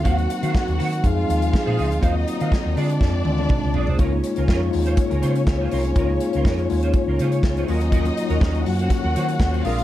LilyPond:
<<
  \new Staff \with { instrumentName = "String section" } { \time 4/4 \key des \major \tempo 4 = 122 <ges' ges''>2 <f' f''>2 | <ees' ees''>4. <d' d''>2~ <d' d''>8 | <des' des''>1~ | <des' des''>2.~ <des' des''>8 <ees' ees''>8~ |
<ees' ees''>4. <ges' ges''>2 <f' f''>8 | }
  \new Staff \with { instrumentName = "Clean electric guitar" } { \time 4/4 \key des \major <ges' c'' f''>16 r8 <ges' c'' f''>16 r8 <ges' c'' ges''>16 r4. <ees' aes' c''>16 <ees' aes' ees''>16 r16 | <ges' c'' f''>16 r8 <ges' c'' f''>16 r8 <d' aes' d''>16 r4. r16 <d' aes' d''>16 <d' aes' c''>16 | <des' f' bes'>16 r8 <des' f' bes'>16 <des' f' bes'>16 r8 <des' f' c''>16 r16 <des' f' bes'>16 <des' f' c''>16 r8 <des' f' c''>16 <des' f' bes'>16 r16 | <des' f' bes'>16 r8 <des' f' bes'>16 <des' f' bes'>16 r8 <des' f' c''>16 r16 <des' f' bes'>16 <des' f' c''>16 r8 <des' f' c''>16 <des' ges' bes'>16 r16 |
<des' ges' bes'>16 r8 <des' ges' bes'>16 <des' ges' bes'>16 r8 <des' ges' c''>16 r16 <des' ges' bes'>16 <des' ges' c''>16 r8 <des' ges' c''>16 <d' aes' bes'>16 r16 | }
  \new Staff \with { instrumentName = "Tine electric piano" } { \time 4/4 \key des \major <ges bes c' ees' ges'>4. r8 <f aes c' ees'>8 <f aes c' ees'>4 r8 | <ges bes c' f'>4. <aes c' d' f'>8. r16 <aes c' d' f'>4 r8 | <aes bes ees' f'>16 <aes bes ees' f'>4 r16 <aes bes ees' f'>4. r4 | <aes bes ees' f'>16 <aes bes ees' aes'>4 r16 <aes bes ees' f'>4. r8 <ges bes des' f'>8 |
r16 <ges bes des' f'>4 r16 <ges bes des' ges'>4. r8 <aes c' d' f'>8 | }
  \new Staff \with { instrumentName = "French horn section" } { \time 4/4 \key des \major << { <ees c' ges'>2 <f aes'>2 | <ees ges c'>4. <d aes f'>2~ <d aes f'>8 | <des f'>1~ | <des f'>2.~ <des f'>8 <ees ges>8~ |
<ees ges>2.~ <ees ges>8 <aes d'>8 | } \\ { ees'2 ees'2 | f'4. r2 r8 | bes1 | des'2.~ des'8 des'8~ |
des'2.~ des'8 bes8 | } >> }
  \new Staff \with { instrumentName = "Fingered electric bass" } { \clef bass \time 4/4 \key des \major ees,8 r16 ees16 r16 ees,16 ees8 f,8 ees,8 r16 bes,16 des,16 d,16 | ees,8 r16 ees16 r16 ees,16 d8 f,8 d,8 r16 des,16 ces,16 c,16 | des,8 r16 des,16 f,8 ees,8 r16 des,16 des8 des,8 c,8 | des,8 r16 des,16 f,8 ees,8 r16 des,16 des8 des,8 ees,8~ |
ees,8 r16 ees,16 r8 ges,8 r16 ees,16 ees8 ees,8 bes,,8 | }
  \new DrumStaff \with { instrumentName = "Drums" } \drummode { \time 4/4 <hh bd>16 hh16 hh16 hh16 <bd sn>16 hh16 hho16 hh16 <hh bd>8 hh16 hh16 <bd sn>8 hho16 hh16 | <hh bd>8 hh16 hh16 <bd sn>8 hho16 hh16 <bd sn>8 tommh16 tommh16 <bd toml>8 tomfh16 tomfh16 | <hh bd>8 hh16 hh16 <bd sn>8 hho16 hh16 <hh bd>16 hh16 hh16 hh16 <bd sn>8 hho16 hh16 | <hh bd>8 hh16 hh16 <bd sn>16 hh16 hho16 hh16 <hh bd>8 hh16 hh16 <bd sn>16 hh16 hho16 hh16 |
<hh bd>16 hh16 hh16 hh16 <bd sn>16 hh16 hho16 hh16 <hh bd sn>8 hh16 hh16 <bd sn>16 hh16 hho16 hh16 | }
>>